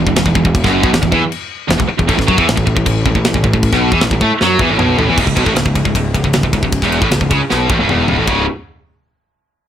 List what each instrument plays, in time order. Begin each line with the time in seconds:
0.07 picked electric bass E1, distorted electric guitar E2, kick
0.16 picked electric bass E1, distorted electric guitar E2, snare, crash
0.26 picked electric bass E1, distorted electric guitar E2, kick
0.35 picked electric bass E1, distorted electric guitar E2, kick
0.45 picked electric bass E1, distorted electric guitar E2, kick
0.55 kick, crash
0.64 picked electric bass F#1, distorted electric guitar F#2, kick, snare
0.83 picked electric bass B1, distorted electric guitar B2, kick
0.92 picked electric bass E1, distorted electric guitar E2, snare, crash
1.02 picked electric bass E1, distorted electric guitar E2, kick
1.12 picked electric bass E2, distorted electric guitar E3, kick
1.32 crash
1.69 picked electric bass E1, distorted electric guitar E2, snare, crash
1.79 picked electric bass E1, distorted electric guitar E2, kick
1.88 muted distorted electric guitar stroke, muted picked electric bass stroke
1.99 picked electric bass E1, distorted electric guitar E2, kick
2.08 picked electric bass A1, distorted electric guitar A2, kick, crash
2.17 picked electric bass A1, distorted electric guitar A2, kick, snare
2.27 picked electric bass F#2, distorted electric guitar F#3, kick
2.38 picked electric bass E2, distorted electric guitar E3, kick
2.47 picked electric bass A1, distorted electric guitar A2, snare, crash
2.56 picked electric bass A1, distorted electric guitar A2, kick
2.66 picked electric bass A1, distorted electric guitar A2, kick
2.76 picked electric bass A1, distorted electric guitar A2, kick
2.86 picked electric bass A1, distorted electric guitar A2, kick, crash
3.06 picked electric bass A1, distorted electric guitar A2, kick
3.15 picked electric bass A1, distorted electric guitar A2, kick
3.25 picked electric bass A1, distorted electric guitar A2, snare, crash
3.34 picked electric bass A1, distorted electric guitar A2, kick
3.44 picked electric bass A1, distorted electric guitar A2, kick
3.53 picked electric bass A1, distorted electric guitar A2, kick
3.63 kick, crash
3.73 picked electric bass B1, distorted electric guitar B2, kick, snare
3.92 picked electric bass E2, distorted electric guitar E3, kick
4.01 picked electric bass A1, distorted electric guitar A2, snare, crash
4.11 picked electric bass A1, distorted electric guitar A2, kick
4.21 picked electric bass A2, distorted electric guitar A3, kick
4.41 picked electric bass F#2, distorted electric guitar F#3, snare
4.59 picked electric bass E2, distorted electric guitar E3, kick
4.70 picked electric bass A1, distorted electric guitar A2
4.79 picked electric bass B1, distorted electric guitar B2, mid tom
4.98 picked electric bass A1, distorted electric guitar A2, floor tom
5.09 picked electric bass E2, distorted electric guitar E3
5.17 picked electric bass C#1, distorted electric guitar C#2, kick, crash
5.27 picked electric bass C#1, distorted electric guitar C#2, kick
5.36 picked electric bass B1, distorted electric guitar B2, kick, ride
5.45 picked electric bass A1, distorted electric guitar A2, kick
5.55 picked electric bass C#1, distorted electric guitar C#2, snare, ride
5.66 picked electric bass C#1, distorted electric guitar C#2, kick
5.75 picked electric bass C#1, distorted electric guitar C#2, kick, ride
5.85 picked electric bass C#1, distorted electric guitar C#2, kick
5.95 picked electric bass C#1, distorted electric guitar C#2, kick, ride
6.14 picked electric bass C#1, distorted electric guitar C#2, kick, ride
6.24 picked electric bass C#1, distorted electric guitar C#2, kick
6.33 picked electric bass C#1, distorted electric guitar C#2, snare, ride
6.43 picked electric bass C#1, distorted electric guitar C#2, kick
6.53 picked electric bass C#1, distorted electric guitar C#2, kick, ride
6.63 picked electric bass C#1, distorted electric guitar C#2, kick
6.72 kick, ride
6.82 picked electric bass E1, distorted electric guitar E2, kick, snare
6.92 ride
7.01 picked electric bass A1, distorted electric guitar A2, kick
7.11 picked electric bass C#1, distorted electric guitar C#2, snare, ride
7.21 picked electric bass C#1, distorted electric guitar C#2, kick
7.31 picked electric bass C#2, distorted electric guitar C#3, kick, ride
7.50 picked electric bass B1, distorted electric guitar B2, snare
7.70 picked electric bass A1, distorted electric guitar A2, kick
7.79 picked electric bass C#1, distorted electric guitar C#2
7.89 picked electric bass E1, distorted electric guitar E2, mid tom
8.08 picked electric bass C#1, distorted electric guitar C#2, floor tom
8.17 picked electric bass A1, distorted electric guitar A2
8.27 picked electric bass C#1, distorted electric guitar C#2 G#2 C#3, kick, ride bell